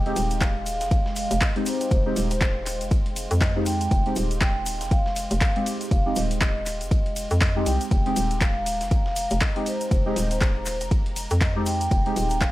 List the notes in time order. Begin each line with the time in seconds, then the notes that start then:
Already playing: F1 G#3 D#5 F5 G5 C6
0.06 G#3 C4 D#4 G4, closed hi-hat
0.16 D#1, open hi-hat, ride, tambourine, shaker
0.30 closed hi-hat, shaker
0.41 F5, kick, snare, clap, closed hi-hat, ride, tambourine, shaker
0.66 open hi-hat, ride, tambourine, shaker
0.81 F1, snare, closed hi-hat, shaker
0.91 F5, kick, closed hi-hat, ride, tambourine, shaker
1.06 snare
1.16 F5, open hi-hat, ride, tambourine, shaker
1.31 F1, closed hi-hat, shaker
1.41 D#5, kick, snare, clap, closed hi-hat, open hi-hat, ride, shaker
1.56 G#3 C4 D#4 G4, closed hi-hat
1.66 C5, open hi-hat, ride, tambourine, shaker
1.81 closed hi-hat, shaker
1.91 F1 C5, kick, closed hi-hat, ride, tambourine, shaker
2.06 G#3 C4 D#4 G4
2.16 D#1 D#5, snare, open hi-hat, ride, tambourine, shaker
2.31 C5, closed hi-hat, shaker
2.41 kick, snare, clap, closed hi-hat, ride, tambourine, shaker
2.66 clap, open hi-hat, ride, tambourine, shaker
2.81 F1, closed hi-hat, shaker
2.91 kick, closed hi-hat, ride, tambourine, shaker
3.06 closed hi-hat
3.16 open hi-hat, ride, tambourine, shaker
3.31 F2, closed hi-hat, shaker
3.41 D#5, kick, snare, clap, open hi-hat, ride, tambourine, shaker
3.56 G#3 C4 D#4 G4
3.66 G5, open hi-hat, ride, tambourine, shaker
3.81 closed hi-hat, shaker
3.91 F1, kick, closed hi-hat, ride, tambourine, shaker
4.06 G#3 C4 D#4 G4, closed hi-hat
4.16 D#1, open hi-hat, ride, tambourine, shaker
4.31 closed hi-hat, shaker
4.41 G5, kick, snare, clap, closed hi-hat, tambourine, shaker
4.66 open hi-hat, ride, tambourine, shaker
4.81 F1, snare, closed hi-hat, shaker
4.91 F5, kick, closed hi-hat, ride, tambourine, shaker
5.06 snare
5.16 F5, open hi-hat, ride, tambourine, shaker
5.31 F1, closed hi-hat, shaker
5.41 kick, snare, clap, closed hi-hat, open hi-hat, ride, shaker
5.56 G#3 C4 D#4 G4, closed hi-hat
5.66 open hi-hat, ride, tambourine, shaker
5.81 closed hi-hat, shaker
5.91 F1 F5, kick, closed hi-hat, ride, tambourine, shaker
6.06 G#3 C4 D#4 G4
6.16 D#1 D#5, snare, open hi-hat, ride, tambourine, shaker
6.31 closed hi-hat, shaker
6.41 kick, snare, clap, closed hi-hat, ride, tambourine, shaker
6.66 clap, open hi-hat, ride, tambourine, shaker
6.81 F1, closed hi-hat, shaker
6.91 kick, closed hi-hat, ride, tambourine, shaker
7.06 closed hi-hat
7.16 open hi-hat, ride, tambourine, shaker
7.31 F2, closed hi-hat, shaker
7.41 D#5, kick, snare, clap, open hi-hat, ride, tambourine, shaker
7.56 G#3 C4 D#4 G4
7.66 C2 G5, open hi-hat, ride, tambourine, shaker
7.81 closed hi-hat, shaker
7.91 F1 G5 A#5, kick, closed hi-hat, ride, tambourine, shaker
8.06 G#3 C4 D#4 G4, closed hi-hat
8.16 D#1, open hi-hat, ride, tambourine, shaker
8.31 closed hi-hat, shaker
8.41 F5, kick, snare, clap, closed hi-hat, ride, tambourine, shaker
8.66 open hi-hat, ride, tambourine, shaker
8.81 F1, snare, closed hi-hat, shaker
8.91 F5, kick, closed hi-hat, ride, tambourine, shaker
9.06 snare
9.16 F5, open hi-hat, ride, tambourine, shaker
9.30 F1, closed hi-hat, shaker
9.40 D#5, kick, snare, clap, closed hi-hat, open hi-hat, ride, shaker
9.56 G#3 C4 D#4 G4, closed hi-hat
9.66 C5, open hi-hat, ride, tambourine, shaker
9.81 closed hi-hat, shaker
9.91 F1 C5, kick, closed hi-hat, ride, tambourine, shaker
10.06 G#3 C4 D#4 G4
10.16 D#1 D#5, snare, open hi-hat, ride, tambourine, shaker
10.31 C5, closed hi-hat, shaker
10.41 kick, snare, clap, closed hi-hat, ride, tambourine, shaker
10.66 clap, open hi-hat, ride, tambourine, shaker
10.81 F1, closed hi-hat, shaker
10.91 kick, closed hi-hat, ride, tambourine, shaker
11.06 closed hi-hat
11.16 open hi-hat, ride, tambourine, shaker
11.30 F2, closed hi-hat, shaker
11.41 D#5, kick, snare, clap, open hi-hat, ride, tambourine, shaker
11.56 G#3 C4 D#4 G4
11.66 G5, open hi-hat, ride, tambourine, shaker
11.81 closed hi-hat, shaker
11.91 F1 G5, kick, closed hi-hat, ride, tambourine, shaker
12.06 G#3 C4 D#4 G4, closed hi-hat
12.16 D#1, open hi-hat, ride, tambourine, shaker
12.30 closed hi-hat, shaker
12.41 F5, kick, snare, clap, closed hi-hat, ride, tambourine, shaker